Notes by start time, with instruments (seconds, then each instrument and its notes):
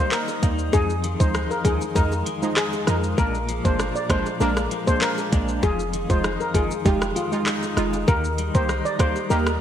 Already playing: clean electric guitar D#3 G3 A#3 D#4, synth stab G3 A#3 D#4, analog synth pad G4 D#5 A#5 D#6
0.12 clean electric guitar D#4, steel pan A#4, clap, shaker
0.28 high bongo, shaker
0.42 808-style bass D#2, synth stab G3 A#3 D#4, clean electric guitar A#3, kick, closed hi-hat, low bongo, shaker
0.59 shaker
0.73 clean electric guitar F2, 808-style bass F2, synth stab F3 G#3 D#4, steel pan G#4, analog synth pad G#4 F5 C6, kick, high bongo, shaker
0.90 shaker
1.04 clean electric guitar D#3, closed hi-hat, shaker
1.20 808-style bass D2, synth stab F3 G#3 D#4, steel pan C5, kick, shaker
1.34 clean electric guitar D#4, cross-stick, shaker
1.51 steel pan A#4, shaker
1.65 808-style bass D#2, clean electric guitar D#3, synth stab F3 G#3 D#4, steel pan G#4, kick, closed hi-hat, low bongo, shaker
1.81 high bongo, shaker
1.95 808-style bass F2, synth stab F3 G#3 D#4, clean electric guitar G#3, steel pan A#4, kick, high bongo, shaker
2.12 high bongo, shaker
2.26 clean electric guitar D#3, closed hi-hat, shaker
2.42 synth stab F3 G#3 D#4, shaker
2.57 clean electric guitar D#4, steel pan G#4, cross-stick, clap, shaker
2.73 high bongo, shaker
2.87 808-style bass F2, synth stab F3 G#3 D#4, clean electric guitar G#3, steel pan A#4, cross-stick, closed hi-hat, low bongo, shaker
3.03 shaker
3.18 808-style bass A#1, clean electric guitar A#2, synth stab G#3 A#3 D4, analog synth pad G#4 A#5 D6, steel pan A#4, kick, high bongo, shaker
3.34 shaker
3.49 clean electric guitar F3, closed hi-hat, shaker
3.65 808-style bass G1, synth stab G#3 A#3 D4, steel pan C5, kick, shaker
3.79 clean electric guitar D4, cross-stick, shaker
3.95 steel pan D5, shaker
4.10 808-style bass G#1, clean electric guitar F3, synth stab G#3 A#3 D4, steel pan C5, kick, cross-stick, closed hi-hat, low bongo, shaker
4.26 high bongo, shaker
4.40 808-style bass A#1, synth stab G#3 A#3 D4, clean electric guitar G#3, steel pan A#4, high bongo, shaker
4.57 cross-stick, high bongo, shaker
4.71 clean electric guitar F3, closed hi-hat, shaker
4.87 synth stab G#3 A#3 D4, steel pan C5, kick, shaker
5.01 clean electric guitar D4, steel pan A#4, clap, shaker
5.18 high bongo, shaker
5.32 808-style bass A#1, synth stab G#3 A#3 D4, clean electric guitar G#3, kick, closed hi-hat, low bongo, shaker
5.48 shaker
5.63 808-style bass F1, clean electric guitar F2, synth stab G#3 D#4 F4, steel pan G#4, analog synth pad C6 D#6, kick, high bongo, shaker
5.79 shaker
5.93 clean electric guitar D#3, closed hi-hat, shaker
6.09 808-style bass F1, synth stab G#3 D#4 F4, steel pan C5, kick, shaker
6.24 clean electric guitar D#4, cross-stick, shaker
6.40 steel pan A#4, shaker
6.54 808-style bass G1, clean electric guitar D#3, synth stab G#3 D#4 F4, steel pan G#4, kick, closed hi-hat, low bongo, shaker
6.71 high bongo, shaker
6.85 808-style bass F1, synth stab G#3 D#4 F4, clean electric guitar G#3, steel pan G4, kick, high bongo, shaker
7.02 cross-stick, high bongo, shaker
7.16 clean electric guitar D#3, steel pan F4, closed hi-hat, shaker
7.32 synth stab G#3 D#4 F4, shaker
7.46 clean electric guitar D#4, cross-stick, clap, shaker
7.63 high bongo, shaker
7.77 808-style bass F1, synth stab G#3 D#4 F4, clean electric guitar G#3, cross-stick, closed hi-hat, low bongo, shaker
7.93 high bongo, shaker
8.07 808-style bass D#2, clean electric guitar D#3, synth stab A#3 D#4 G4, analog synth pad G4 D#5 A#5 D#6, steel pan A#4, kick, high bongo, shaker
8.24 shaker
8.38 clean electric guitar G3, closed hi-hat, shaker
8.54 808-style bass C2, synth stab A#3 D#4 G4, steel pan C5, kick, shaker
8.69 clean electric guitar D#4, cross-stick, shaker
8.85 steel pan D5, shaker
8.99 808-style bass D2, clean electric guitar G3, synth stab A#3 D#4 G4, steel pan C5, kick, cross-stick, closed hi-hat, low bongo, shaker
9.16 high bongo, shaker
9.30 808-style bass D#2, synth stab A#3 D#4 G4, clean electric guitar A#3, steel pan A#4, high bongo, shaker
9.46 cross-stick, high bongo, shaker